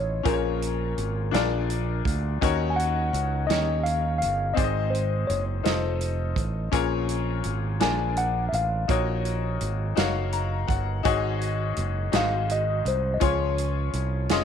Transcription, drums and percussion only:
0.26 kick loud
0.26 closed hi-hat medium
0.62 closed hi-hat soft
0.98 closed hi-hat soft
1.34 snare loud
1.34 closed hi-hat medium
1.70 closed hi-hat soft
2.05 kick medium
2.05 closed hi-hat medium
2.42 kick medium
2.42 closed hi-hat medium
2.79 closed hi-hat soft
3.14 closed hi-hat soft
3.50 snare loud
3.50 closed hi-hat medium
3.86 closed hi-hat soft
4.22 closed hi-hat medium
4.57 kick medium
4.57 closed hi-hat medium
4.94 closed hi-hat soft
5.30 closed hi-hat soft
5.65 snare loud
5.65 closed hi-hat medium
6.01 closed hi-hat medium
6.36 kick medium
6.36 closed hi-hat soft
6.73 kick medium
6.73 closed hi-hat medium
7.09 closed hi-hat soft
7.44 closed hi-hat soft
7.80 snare loud
7.80 closed hi-hat medium
8.17 closed hi-hat soft
8.53 closed hi-hat medium
8.89 kick medium
8.89 closed hi-hat medium
9.25 closed hi-hat soft
9.61 closed hi-hat soft
9.97 snare loud
9.97 closed hi-hat medium
10.32 closed hi-hat soft
10.69 kick medium
10.69 closed hi-hat soft
11.05 kick loud
11.05 closed hi-hat medium
11.41 closed hi-hat soft
11.76 closed hi-hat soft
12.13 snare loud
12.13 closed hi-hat medium
12.49 closed hi-hat medium
12.86 closed hi-hat medium
13.21 kick medium
13.21 closed hi-hat medium
13.58 closed hi-hat soft
13.93 closed hi-hat soft
14.29 snare loud
14.29 closed hi-hat medium

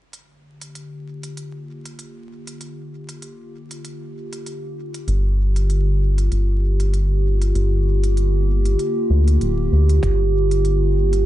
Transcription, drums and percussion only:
0.13 closed hi-hat soft
0.61 closed hi-hat soft
0.75 closed hi-hat soft
1.23 closed hi-hat soft
1.37 closed hi-hat soft
1.86 closed hi-hat soft
1.99 closed hi-hat soft
2.47 closed hi-hat soft
2.61 closed hi-hat soft
3.09 closed hi-hat soft
3.22 closed hi-hat soft
3.71 closed hi-hat soft
3.85 closed hi-hat soft
4.33 closed hi-hat soft
4.46 closed hi-hat soft
4.94 closed hi-hat soft
5.08 closed hi-hat soft
5.56 closed hi-hat soft
5.70 closed hi-hat soft
6.18 closed hi-hat soft
6.32 closed hi-hat soft
6.80 closed hi-hat soft
6.94 closed hi-hat soft
7.42 closed hi-hat soft
7.55 closed hi-hat soft
8.04 closed hi-hat soft
8.17 closed hi-hat soft
8.65 closed hi-hat soft
8.79 closed hi-hat soft
9.28 closed hi-hat soft
9.41 closed hi-hat soft
9.89 closed hi-hat soft
10.03 kick loud
10.03 closed hi-hat soft
10.51 closed hi-hat soft
10.65 closed hi-hat soft
11.13 closed hi-hat soft

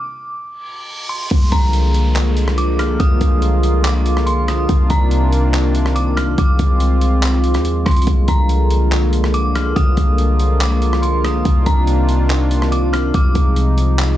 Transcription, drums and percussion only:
1.31 kick loud
1.31 closed hi-hat medium
1.52 kick loud
1.52 closed hi-hat medium
1.73 closed hi-hat medium
1.94 closed hi-hat medium
2.16 clap loud
2.16 closed hi-hat medium
2.37 closed hi-hat medium
2.48 cross-stick loud
2.58 closed hi-hat medium
2.79 cross-stick loud
2.79 closed hi-hat medium
3.00 kick loud
3.00 closed hi-hat medium
3.21 kick loud
3.21 closed hi-hat medium
3.42 closed hi-hat medium
3.63 closed hi-hat medium
3.85 clap loud
3.85 closed hi-hat medium
4.06 closed hi-hat medium
4.17 cross-stick loud
4.27 closed hi-hat medium
4.48 cross-stick loud
4.48 closed hi-hat medium
4.69 kick loud
4.69 closed hi-hat medium
4.90 kick loud
4.90 closed hi-hat medium
5.11 closed hi-hat medium
5.32 closed hi-hat medium
5.54 clap loud
5.54 closed hi-hat medium
5.75 closed hi-hat medium
5.86 cross-stick loud
5.96 closed hi-hat medium
6.17 cross-stick loud
6.17 closed hi-hat medium
6.38 kick loud
6.38 closed hi-hat medium
6.59 kick loud
6.59 closed hi-hat medium
6.80 closed hi-hat medium
7.01 closed hi-hat medium
7.23 clap loud
7.23 closed hi-hat medium
7.44 closed hi-hat medium
7.54 cross-stick loud
7.54 closed hi-hat medium
7.65 closed hi-hat medium
7.86 kick loud
7.86 cross-stick loud
7.86 closed hi-hat soft
7.91 closed hi-hat medium
7.96 closed hi-hat medium
8.02 closed hi-hat medium
8.07 kick loud
8.07 closed hi-hat medium
8.28 kick loud
8.28 closed hi-hat medium
8.49 closed hi-hat medium
8.70 closed hi-hat medium
8.92 clap loud
8.92 closed hi-hat medium
9.13 closed hi-hat medium
9.24 cross-stick loud
9.34 closed hi-hat medium
9.55 cross-stick loud
9.55 closed hi-hat medium
9.76 kick loud
9.76 closed hi-hat medium
9.97 kick loud
9.97 closed hi-hat medium
10.18 closed hi-hat medium
10.39 closed hi-hat medium
10.61 clap loud
10.61 closed hi-hat medium
10.82 closed hi-hat medium
10.93 cross-stick loud
11.03 closed hi-hat medium
11.24 cross-stick loud
11.24 closed hi-hat medium
11.45 kick loud
11.45 closed hi-hat medium
11.66 kick loud
11.66 closed hi-hat medium
11.87 closed hi-hat medium
12.09 closed hi-hat medium
12.30 clap loud
12.30 closed hi-hat medium
12.51 closed hi-hat medium
12.62 cross-stick loud
12.72 closed hi-hat medium
12.93 cross-stick loud
12.93 closed hi-hat medium
13.14 kick loud
13.14 closed hi-hat medium
13.35 kick loud
13.35 closed hi-hat medium
13.56 closed hi-hat medium
13.78 closed hi-hat medium
13.99 clap loud
13.99 closed hi-hat medium

